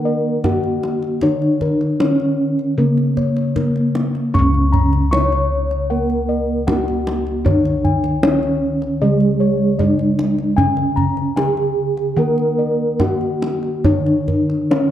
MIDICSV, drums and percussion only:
0, 0, Header, 1, 2, 480
1, 0, Start_track
1, 0, Tempo, 780234
1, 751, Time_signature, 4, 2, 24, 8
1, 6992, Tempo, 816327
1, 7952, Tempo, 859599
1, 9021, End_track
2, 0, Start_track
2, 0, Title_t, "Kendang"
2, 271, Note_on_c, 9, 63, 50
2, 271, Note_on_c, 9, 64, 53
2, 333, Note_off_c, 9, 63, 0
2, 333, Note_off_c, 9, 64, 0
2, 391, Note_on_c, 9, 62, 17
2, 453, Note_off_c, 9, 62, 0
2, 513, Note_on_c, 9, 63, 42
2, 575, Note_off_c, 9, 63, 0
2, 631, Note_on_c, 9, 62, 21
2, 692, Note_off_c, 9, 62, 0
2, 747, Note_on_c, 9, 64, 50
2, 808, Note_off_c, 9, 64, 0
2, 873, Note_on_c, 9, 62, 20
2, 934, Note_off_c, 9, 62, 0
2, 990, Note_on_c, 9, 64, 49
2, 1052, Note_off_c, 9, 64, 0
2, 1113, Note_on_c, 9, 62, 21
2, 1174, Note_off_c, 9, 62, 0
2, 1232, Note_on_c, 9, 63, 58
2, 1293, Note_off_c, 9, 63, 0
2, 1353, Note_on_c, 9, 62, 18
2, 1414, Note_off_c, 9, 62, 0
2, 1594, Note_on_c, 9, 62, 17
2, 1656, Note_off_c, 9, 62, 0
2, 1830, Note_on_c, 9, 62, 20
2, 1892, Note_off_c, 9, 62, 0
2, 1951, Note_on_c, 9, 64, 49
2, 2012, Note_off_c, 9, 64, 0
2, 2071, Note_on_c, 9, 62, 26
2, 2132, Note_off_c, 9, 62, 0
2, 2190, Note_on_c, 9, 64, 62
2, 2252, Note_off_c, 9, 64, 0
2, 2312, Note_on_c, 9, 62, 22
2, 2373, Note_off_c, 9, 62, 0
2, 2431, Note_on_c, 9, 63, 41
2, 2492, Note_off_c, 9, 63, 0
2, 2553, Note_on_c, 9, 62, 22
2, 2614, Note_off_c, 9, 62, 0
2, 2675, Note_on_c, 9, 64, 62
2, 2736, Note_off_c, 9, 64, 0
2, 2795, Note_on_c, 9, 62, 25
2, 2856, Note_off_c, 9, 62, 0
2, 2914, Note_on_c, 9, 64, 62
2, 2975, Note_off_c, 9, 64, 0
2, 3032, Note_on_c, 9, 62, 21
2, 3093, Note_off_c, 9, 62, 0
2, 3154, Note_on_c, 9, 63, 66
2, 3216, Note_off_c, 9, 63, 0
2, 3275, Note_on_c, 9, 62, 21
2, 3337, Note_off_c, 9, 62, 0
2, 3513, Note_on_c, 9, 62, 21
2, 3575, Note_off_c, 9, 62, 0
2, 3751, Note_on_c, 9, 62, 17
2, 3812, Note_off_c, 9, 62, 0
2, 4108, Note_on_c, 9, 63, 57
2, 4108, Note_on_c, 9, 64, 71
2, 4170, Note_off_c, 9, 63, 0
2, 4170, Note_off_c, 9, 64, 0
2, 4233, Note_on_c, 9, 62, 21
2, 4294, Note_off_c, 9, 62, 0
2, 4350, Note_on_c, 9, 63, 56
2, 4411, Note_off_c, 9, 63, 0
2, 4471, Note_on_c, 9, 62, 24
2, 4532, Note_off_c, 9, 62, 0
2, 4589, Note_on_c, 9, 64, 66
2, 4650, Note_off_c, 9, 64, 0
2, 4708, Note_on_c, 9, 62, 28
2, 4770, Note_off_c, 9, 62, 0
2, 4828, Note_on_c, 9, 64, 52
2, 4889, Note_off_c, 9, 64, 0
2, 4946, Note_on_c, 9, 62, 26
2, 5007, Note_off_c, 9, 62, 0
2, 5064, Note_on_c, 9, 63, 77
2, 5126, Note_off_c, 9, 63, 0
2, 5185, Note_on_c, 9, 62, 19
2, 5247, Note_off_c, 9, 62, 0
2, 5425, Note_on_c, 9, 62, 24
2, 5487, Note_off_c, 9, 62, 0
2, 5662, Note_on_c, 9, 62, 17
2, 5724, Note_off_c, 9, 62, 0
2, 6025, Note_on_c, 9, 64, 59
2, 6087, Note_off_c, 9, 64, 0
2, 6148, Note_on_c, 9, 62, 20
2, 6209, Note_off_c, 9, 62, 0
2, 6268, Note_on_c, 9, 63, 43
2, 6330, Note_off_c, 9, 63, 0
2, 6389, Note_on_c, 9, 62, 21
2, 6450, Note_off_c, 9, 62, 0
2, 6508, Note_on_c, 9, 64, 66
2, 6569, Note_off_c, 9, 64, 0
2, 6625, Note_on_c, 9, 62, 26
2, 6687, Note_off_c, 9, 62, 0
2, 6750, Note_on_c, 9, 64, 50
2, 6812, Note_off_c, 9, 64, 0
2, 6872, Note_on_c, 9, 62, 22
2, 6934, Note_off_c, 9, 62, 0
2, 6996, Note_on_c, 9, 63, 60
2, 7055, Note_off_c, 9, 63, 0
2, 7113, Note_on_c, 9, 62, 20
2, 7172, Note_off_c, 9, 62, 0
2, 7349, Note_on_c, 9, 62, 21
2, 7407, Note_off_c, 9, 62, 0
2, 7587, Note_on_c, 9, 62, 17
2, 7646, Note_off_c, 9, 62, 0
2, 7951, Note_on_c, 9, 63, 51
2, 7951, Note_on_c, 9, 64, 57
2, 8007, Note_off_c, 9, 63, 0
2, 8007, Note_off_c, 9, 64, 0
2, 8070, Note_on_c, 9, 62, 18
2, 8126, Note_off_c, 9, 62, 0
2, 8190, Note_on_c, 9, 63, 47
2, 8245, Note_off_c, 9, 63, 0
2, 8303, Note_on_c, 9, 62, 20
2, 8359, Note_off_c, 9, 62, 0
2, 8424, Note_on_c, 9, 64, 64
2, 8480, Note_off_c, 9, 64, 0
2, 8547, Note_on_c, 9, 62, 23
2, 8603, Note_off_c, 9, 62, 0
2, 8667, Note_on_c, 9, 64, 46
2, 8723, Note_off_c, 9, 64, 0
2, 8788, Note_on_c, 9, 62, 25
2, 8844, Note_off_c, 9, 62, 0
2, 8910, Note_on_c, 9, 63, 64
2, 8965, Note_off_c, 9, 63, 0
2, 9021, End_track
0, 0, End_of_file